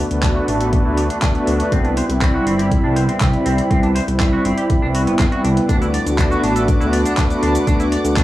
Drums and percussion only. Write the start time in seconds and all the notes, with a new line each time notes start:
0.11 closed hi-hat
0.23 kick, clap, closed hi-hat
0.48 open hi-hat
0.61 closed hi-hat
0.73 kick, closed hi-hat
0.97 open hi-hat
1.10 closed hi-hat
1.22 kick, clap, closed hi-hat
1.35 closed hi-hat
1.47 open hi-hat
1.60 closed hi-hat
1.72 kick, closed hi-hat
1.85 closed hi-hat
1.97 open hi-hat
2.10 closed hi-hat
2.21 kick, clap, closed hi-hat
2.47 open hi-hat
2.59 closed hi-hat
2.71 kick, closed hi-hat
2.96 open hi-hat
3.09 closed hi-hat
3.20 kick, clap, closed hi-hat
3.33 closed hi-hat
3.46 open hi-hat
3.58 closed hi-hat
3.71 kick, closed hi-hat
3.83 closed hi-hat
3.96 open hi-hat
4.08 closed hi-hat
4.20 kick, clap, closed hi-hat
4.45 open hi-hat
4.58 closed hi-hat
4.70 kick, closed hi-hat
4.95 open hi-hat
5.07 closed hi-hat
5.19 kick, clap, closed hi-hat
5.32 closed hi-hat
5.45 open hi-hat
5.57 closed hi-hat
5.69 kick, closed hi-hat, cabasa
5.82 closed hi-hat, cabasa
5.94 open hi-hat
6.07 closed hi-hat, cabasa
6.18 kick, clap, closed hi-hat, cabasa
6.32 cabasa
6.44 open hi-hat
6.56 closed hi-hat, cabasa
6.68 kick, closed hi-hat, cabasa
6.81 cabasa
6.93 open hi-hat
7.05 closed hi-hat, cabasa
7.17 kick, clap, closed hi-hat, cabasa
7.30 closed hi-hat, cabasa
7.43 open hi-hat
7.55 closed hi-hat, cabasa
7.67 kick, closed hi-hat, cabasa
7.80 closed hi-hat, cabasa
7.92 open hi-hat
8.05 closed hi-hat, cabasa
8.17 kick, clap, closed hi-hat, cabasa